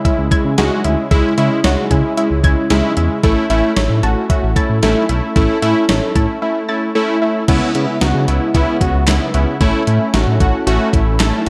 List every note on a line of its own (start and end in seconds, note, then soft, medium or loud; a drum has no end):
0.00 3.20 C#3 medium
0.00 7.44 C#4 medium
0.00 3.20 E4 medium
0.00 3.20 G#4 medium
0.05 0.27 G#3 medium
0.05 0.27 C#4 medium
0.05 0.27 E4 medium
0.05 0.20 E5 loud
0.05 kick loud
0.05 closed hi-hat medium
0.18 0.30 C#2 loud
0.31 0.53 G#3 medium
0.31 0.53 C#4 medium
0.31 0.53 E4 medium
0.31 0.47 G#6 medium
0.31 kick loud
0.31 closed hi-hat medium
0.45 0.56 C#3 loud
0.58 0.70 C#2 medium
0.58 0.80 G#3 loud
0.58 0.80 C#4 loud
0.58 0.80 F#4 loud
0.58 0.74 G#4 medium
0.58 snare loud
0.58 closed hi-hat medium
0.84 0.96 D2 loud
0.84 1.06 G#3 medium
0.84 1.06 C#4 medium
0.84 1.06 E4 medium
0.84 1.00 E5 medium
0.84 closed hi-hat medium
1.11 1.23 C#2 loud
1.11 1.33 G#3 loud
1.11 1.33 C#4 loud
1.11 1.33 E4 loud
1.11 1.27 G#4 medium
1.11 kick loud
1.11 closed hi-hat medium
1.38 1.49 C#3 loud
1.38 1.60 G#3 loud
1.38 1.60 C#4 loud
1.38 1.60 E4 loud
1.38 1.53 E5 medium
1.38 closed hi-hat medium
1.64 1.76 C#2 loud
1.64 1.86 G#3 medium
1.64 1.86 C#4 medium
1.64 1.86 F#4 medium
1.64 1.80 C#5 medium
1.64 snare loud
1.64 closed hi-hat medium
1.91 2.02 C#3 loud
1.91 2.13 G#3 medium
1.91 2.13 C#4 medium
1.91 2.13 E4 loud
1.91 2.06 G#5 medium
1.91 kick loud
1.91 closed hi-hat medium
2.17 2.39 G#3 medium
2.17 2.39 C#4 medium
2.17 2.39 E4 medium
2.17 2.33 E5 loud
2.17 closed hi-hat medium
2.31 2.42 C#2 loud
2.44 2.55 C#2 loud
2.44 2.66 G#3 medium
2.44 2.66 C#4 medium
2.44 2.66 E4 medium
2.44 2.59 G#6 medium
2.44 kick loud
2.44 closed hi-hat medium
2.70 2.82 C#2 medium
2.70 2.92 G#3 loud
2.70 2.92 C#4 loud
2.70 2.92 E4 loud
2.70 2.86 G#4 medium
2.70 snare loud
2.70 closed hi-hat medium
2.97 3.09 E2 medium
2.97 3.19 G#3 medium
2.97 3.19 C#4 medium
2.97 3.19 E4 medium
2.97 3.13 E5 medium
2.97 closed hi-hat medium
3.23 3.35 A1 loud
3.23 3.45 A3 loud
3.23 7.44 A3 medium
3.23 3.45 C#4 loud
3.23 3.45 E4 loud
3.23 7.44 E4 medium
3.23 3.39 A4 medium
3.23 kick loud
3.23 closed hi-hat medium
3.50 3.62 A1 loud
3.50 3.72 A3 loud
3.50 3.72 C#4 loud
3.50 3.72 E4 loud
3.50 3.66 E5 medium
3.50 closed hi-hat medium
3.77 3.88 A1 loud
3.77 3.99 A3 medium
3.77 3.99 C#4 medium
3.77 3.99 E4 medium
3.77 3.92 C#5 medium
3.77 snare loud
3.77 closed hi-hat medium
3.90 4.02 A2 loud
4.03 4.15 A1 loud
4.03 4.25 A3 medium
4.03 4.25 C#4 medium
4.03 4.25 F#4 medium
4.03 4.19 A5 medium
4.03 closed hi-hat medium
4.30 4.52 A3 medium
4.30 4.52 C#4 medium
4.30 4.52 F#4 medium
4.30 4.45 E5 medium
4.30 kick medium
4.30 closed hi-hat medium
4.43 4.55 A1 loud
4.56 4.78 A3 medium
4.56 4.78 C#4 medium
4.56 4.78 E4 medium
4.56 4.72 A6 medium
4.56 kick medium
4.56 closed hi-hat medium
4.70 4.81 A2 medium
4.83 4.94 A1 medium
4.83 5.05 A3 loud
4.83 5.05 C#4 loud
4.83 5.05 E4 loud
4.83 4.98 A4 medium
4.83 snare loud
4.83 closed hi-hat medium
5.09 5.21 B1 medium
5.09 5.31 A3 medium
5.09 5.31 C#4 medium
5.09 5.31 E4 medium
5.09 5.25 E5 medium
5.09 closed hi-hat medium
5.36 5.48 A1 loud
5.36 5.58 A3 loud
5.36 5.58 C#4 loud
5.36 5.58 E4 loud
5.36 5.51 A4 medium
5.36 kick loud
5.36 closed hi-hat medium
5.62 5.74 A2 loud
5.62 5.84 A3 loud
5.62 5.84 C#4 loud
5.62 5.84 E4 loud
5.62 5.78 E5 medium
5.62 closed hi-hat medium
5.89 6.01 A1 loud
5.89 6.11 A3 medium
5.89 6.11 C#4 medium
5.89 6.11 E4 medium
5.89 6.04 C#5 medium
5.89 snare loud
5.89 closed hi-hat medium
6.15 6.27 A2 medium
6.15 6.37 A3 medium
6.15 6.37 C#4 medium
6.15 6.37 E4 medium
6.15 6.31 A5 medium
6.15 kick medium
6.15 closed hi-hat medium
6.42 6.64 A3 medium
6.42 6.64 C#4 medium
6.42 6.64 E4 medium
6.42 6.58 E5 medium
6.69 6.91 A3 medium
6.69 6.91 C#4 medium
6.69 6.91 E4 loud
6.69 6.84 A6 medium
6.95 7.17 A3 loud
6.95 7.17 C#4 loud
6.95 7.17 E4 loud
6.95 7.11 A4 medium
7.22 7.44 A3 medium
7.22 7.44 C#4 medium
7.22 7.44 E4 medium
7.22 7.37 E5 medium
7.48 7.60 C#2 loud
7.48 9.59 C#3 medium
7.48 9.59 G#3 medium
7.48 9.59 B3 medium
7.48 7.70 B3 loud
7.48 7.70 C#4 loud
7.48 7.70 E4 loud
7.48 11.49 E4 medium
7.48 kick loud
7.48 closed hi-hat medium
7.48 crash loud
7.75 7.86 C#3 loud
7.75 7.97 B3 medium
7.75 7.97 C#4 medium
7.75 7.97 E4 medium
7.75 closed hi-hat medium
8.01 8.13 C#2 loud
8.01 8.23 B3 medium
8.01 8.23 C#4 medium
8.01 8.23 F#4 medium
8.01 snare loud
8.01 closed hi-hat medium
8.15 8.26 C#3 loud
8.28 8.40 C#2 loud
8.28 8.50 B3 medium
8.28 8.50 C#4 medium
8.28 8.50 E4 loud
8.28 closed hi-hat medium
8.54 8.66 C#2 loud
8.54 8.76 B3 loud
8.54 8.76 C#4 loud
8.54 8.76 E4 loud
8.54 kick loud
8.54 closed hi-hat medium
8.81 8.93 C#2 medium
8.81 9.03 B3 medium
8.81 9.03 C#4 medium
8.81 9.03 F#4 medium
8.81 kick loud
8.81 closed hi-hat medium
8.94 9.06 C#2 medium
9.07 9.19 C#2 loud
9.07 9.30 B3 medium
9.07 9.30 C#4 medium
9.07 9.30 E4 loud
9.07 snare loud
9.07 clap medium
9.07 closed hi-hat medium
9.34 9.46 C#2 loud
9.34 9.56 B3 medium
9.34 9.56 C#4 medium
9.34 9.56 E4 medium
9.34 closed hi-hat medium
9.61 9.72 A1 loud
9.61 9.83 A3 loud
9.61 11.49 A3 medium
9.61 9.83 C#4 loud
9.61 11.49 C#4 medium
9.61 9.83 E4 loud
9.61 kick loud
9.61 closed hi-hat medium
9.87 9.99 A2 loud
9.87 10.09 A3 medium
9.87 10.09 C#4 medium
9.87 10.09 E4 medium
9.87 closed hi-hat medium
10.14 10.25 A1 loud
10.14 10.36 A3 medium
10.14 10.36 C#4 medium
10.14 10.36 F#4 medium
10.14 snare loud
10.14 closed hi-hat medium
10.27 10.39 A2 loud
10.40 10.52 A1 loud
10.40 10.62 A3 medium
10.40 10.62 C#4 medium
10.40 10.62 F#4 loud
10.40 10.65 F#5 medium
10.40 kick loud
10.40 closed hi-hat medium
10.67 10.79 A1 loud
10.67 10.89 A3 loud
10.67 10.89 C#4 loud
10.67 10.89 F#4 loud
10.67 11.16 E5 medium
10.67 closed hi-hat medium
10.93 11.05 A1 loud
10.93 11.15 A3 medium
10.93 11.15 C#4 medium
10.93 11.15 E4 medium
10.93 kick loud
10.93 closed hi-hat medium
11.07 11.18 A1 loud
11.20 11.32 A1 loud
11.20 11.42 A3 medium
11.20 11.42 C#4 medium
11.20 11.42 E4 loud
11.20 11.49 A5 medium
11.20 snare loud
11.20 clap medium
11.20 closed hi-hat medium